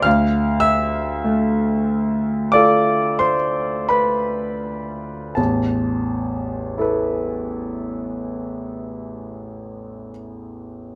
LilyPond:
<<
  \new Staff \with { instrumentName = "Grand piano" } { \time 4/4 \key a \minor \tempo 4 = 43 << { <f'' f'''>8 <e'' e'''>4. <d'' d'''>8 <c'' c'''>8 <b' b''>4 | a''1 | } \\ { r1 | r4 <e' a' b'>2. | } >> }
  \new Staff \with { instrumentName = "Grand piano" } { \clef bass \time 4/4 \key a \minor d,4 a4 <f' a'>2 | <a,, e,>1 | }
>>